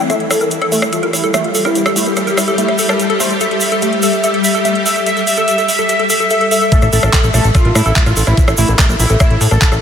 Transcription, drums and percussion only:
0.10 cross-stick soft
0.10 closed hi-hat medium
0.10 shaker medium
0.20 closed hi-hat soft
0.31 cross-stick medium
0.31 open hi-hat loud
0.31 shaker loud
0.41 closed hi-hat soft
0.41 shaker soft
0.51 closed hi-hat loud
0.51 shaker soft
0.62 cross-stick soft
0.62 closed hi-hat soft
0.72 open hi-hat loud
0.72 shaker medium
0.82 cross-stick medium
0.82 closed hi-hat soft
0.82 shaker soft
0.93 closed hi-hat loud
0.93 shaker soft
1.03 closed hi-hat soft
1.13 cross-stick soft
1.13 open hi-hat loud
1.13 shaker medium
1.24 closed hi-hat soft
1.24 shaker soft
1.34 cross-stick medium
1.34 closed hi-hat loud
1.34 shaker medium
1.44 closed hi-hat soft
1.55 open hi-hat loud
1.55 shaker medium
1.65 cross-stick soft
1.65 closed hi-hat soft
1.65 shaker soft
1.75 closed hi-hat medium
1.75 shaker medium
1.86 cross-stick medium
1.86 closed hi-hat soft
1.86 shaker soft
1.96 open hi-hat loud
1.96 shaker loud
2.06 closed hi-hat soft
2.06 shaker soft
2.16 cross-stick soft
2.16 closed hi-hat medium
2.16 shaker medium
2.27 closed hi-hat soft
2.27 shaker soft
2.37 cross-stick medium
2.37 open hi-hat loud
2.37 shaker medium
2.47 closed hi-hat soft
2.47 shaker soft
2.58 closed hi-hat loud
2.58 shaker medium
2.69 cross-stick soft
2.69 closed hi-hat soft
2.78 open hi-hat loud
2.78 shaker medium
2.89 cross-stick medium
2.89 shaker soft
3.00 closed hi-hat loud
3.00 shaker medium
3.10 closed hi-hat soft
3.20 cross-stick soft
3.20 open hi-hat loud
3.20 shaker loud
3.31 closed hi-hat soft
3.31 shaker soft
3.40 closed hi-hat medium
3.40 shaker medium
3.51 closed hi-hat soft
3.60 open hi-hat loud
3.60 shaker loud
3.72 closed hi-hat soft
3.72 shaker soft
3.82 closed hi-hat medium
3.82 shaker medium
3.93 closed hi-hat soft
4.02 open hi-hat loud
4.02 shaker loud
4.13 closed hi-hat soft
4.13 shaker soft
4.23 closed hi-hat medium
4.23 shaker medium
4.34 closed hi-hat soft
4.44 open hi-hat loud
4.44 shaker loud
4.55 closed hi-hat soft
4.55 shaker soft
4.65 closed hi-hat loud
4.65 shaker medium
4.75 closed hi-hat soft
4.86 open hi-hat loud
4.86 shaker loud
4.96 closed hi-hat soft
4.96 shaker soft
5.06 closed hi-hat medium
5.06 shaker medium
5.17 closed hi-hat soft
5.17 shaker soft
5.27 open hi-hat loud
5.27 shaker medium
5.36 shaker soft
5.48 closed hi-hat medium
5.48 shaker medium
5.58 closed hi-hat soft
5.58 shaker soft
5.68 open hi-hat loud
5.68 shaker medium
5.78 closed hi-hat soft
5.78 shaker soft
5.89 closed hi-hat medium
5.89 shaker soft
6.00 closed hi-hat soft
6.10 open hi-hat loud
6.10 shaker loud
6.20 closed hi-hat soft
6.20 shaker soft
6.30 closed hi-hat loud
6.30 shaker medium
6.41 closed hi-hat soft
6.51 open hi-hat loud
6.51 shaker loud
6.61 closed hi-hat soft
6.61 shaker soft
6.72 kick loud
6.72 closed hi-hat loud
6.72 shaker medium
6.82 cross-stick soft
6.82 closed hi-hat soft
6.82 shaker soft
6.93 open hi-hat loud
6.93 shaker medium
7.02 cross-stick medium
7.02 shaker soft
7.13 kick loud
7.13 clap loud
7.13 closed hi-hat loud
7.13 shaker medium
7.24 closed hi-hat soft
7.24 shaker soft
7.34 cross-stick soft
7.34 open hi-hat loud
7.34 shaker medium
7.44 closed hi-hat soft
7.44 shaker soft
7.55 kick loud
7.55 cross-stick soft
7.55 closed hi-hat loud
7.55 shaker medium
7.65 closed hi-hat soft
7.75 cross-stick medium
7.75 open hi-hat loud
7.75 shaker medium
7.86 closed hi-hat soft
7.86 shaker soft
7.96 kick loud
7.96 clap loud
7.96 closed hi-hat loud
7.96 shaker medium
8.06 cross-stick soft
8.06 closed hi-hat soft
8.06 shaker soft
8.16 open hi-hat loud
8.16 shaker loud
8.27 cross-stick soft
8.27 closed hi-hat soft
8.27 shaker soft
8.37 kick loud
8.37 closed hi-hat medium
8.37 shaker medium
8.48 cross-stick medium
8.48 closed hi-hat soft
8.48 shaker soft
8.57 open hi-hat loud
8.57 shaker loud
8.68 closed hi-hat soft
8.68 shaker soft
8.79 kick loud
8.79 cross-stick soft
8.79 clap loud
8.79 closed hi-hat medium
8.79 shaker medium
8.89 closed hi-hat soft
8.89 shaker soft
8.99 open hi-hat loud
8.99 shaker medium
9.09 closed hi-hat soft
9.09 shaker soft
9.20 kick loud
9.20 cross-stick medium
9.20 closed hi-hat loud
9.20 shaker medium
9.31 closed hi-hat soft
9.41 open hi-hat loud
9.41 shaker medium
9.51 cross-stick soft
9.51 shaker soft
9.62 kick loud
9.62 clap loud
9.62 closed hi-hat loud
9.62 shaker medium
9.72 cross-stick soft
9.72 closed hi-hat soft
9.72 shaker soft

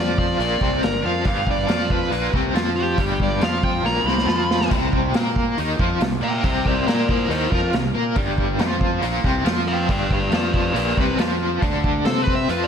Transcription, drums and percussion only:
0.18 kick medium
0.40 open hi-hat soft
0.61 kick medium
0.61 snare soft
0.83 snare loud
0.83 open hi-hat soft
1.25 kick loud
1.25 open hi-hat soft
1.47 kick medium
1.68 snare loud
1.68 open hi-hat soft
1.90 kick medium
2.12 open hi-hat medium
2.34 kick medium
2.34 snare soft
2.55 snare loud
2.55 open hi-hat medium
2.98 kick loud
2.98 open hi-hat medium
3.20 kick medium
3.41 snare loud
3.41 open hi-hat medium
3.63 kick medium
3.86 snare medium
4.08 snare medium
4.18 snare medium
4.29 snare medium
4.51 snare medium
4.61 snare medium
4.71 kick loud
4.71 open hi-hat soft
4.71 crash medium
4.93 kick medium
5.14 snare loud
5.14 open hi-hat medium
5.36 kick medium
5.58 open hi-hat medium
5.79 kick medium
6.01 snare loud
6.01 open hi-hat medium
6.44 kick loud
6.44 open hi-hat medium
6.66 kick medium
6.88 snare loud
6.88 open hi-hat medium
7.09 kick medium
7.31 open hi-hat medium
7.52 kick medium
7.52 snare soft
7.73 snare loud
7.73 open hi-hat soft
8.16 kick loud
8.16 open hi-hat medium
8.38 kick medium
8.59 snare loud
8.59 open hi-hat soft
8.81 kick medium
9.02 open hi-hat medium
9.24 kick medium
9.24 snare soft
9.46 snare loud
9.46 open hi-hat medium
9.89 kick loud
9.89 open hi-hat medium
10.11 kick medium
10.32 snare loud
10.32 open hi-hat medium
10.54 kick medium
10.76 open hi-hat medium
10.97 kick medium
10.97 snare soft
11.18 snare loud
11.18 open hi-hat medium
11.62 kick loud
11.62 open hi-hat medium
11.84 kick medium
12.05 snare loud
12.05 open hi-hat medium
12.27 kick medium
12.49 open hi-hat medium

